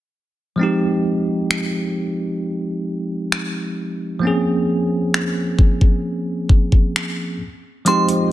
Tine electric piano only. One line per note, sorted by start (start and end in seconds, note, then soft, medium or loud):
0.56 4.17 F3 medium
0.56 4.18 G#3 medium
0.56 4.19 C4 medium
0.61 4.20 D#4 medium
0.61 4.20 G4 medium
4.19 7.35 F3 medium
4.19 7.36 A#3 medium
4.19 7.37 C4 medium
4.25 7.38 C#4 medium
4.25 7.39 G#4 medium
7.85 8.32 F3 medium
7.85 8.32 G#3 medium
7.85 8.32 C4 medium
7.85 8.32 D#4 medium
7.85 8.32 G4 medium